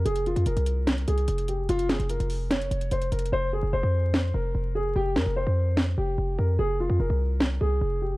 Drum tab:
HH |x--x--x--x--x--x--x-----x--x--x--x--x--x--x-----|x--x--x--x--x--x--o-----x--x--x--x--x--x--x-x-x-|------------------------------------------------|------------------------------------------------|
SD |------------------------o-----------------------|------o-----------------o-----------------------|------------------------o-----------------------|------o-----------------o-----------------------|

HH |------------------------------------------------|
SD |------------------------o-----------------------|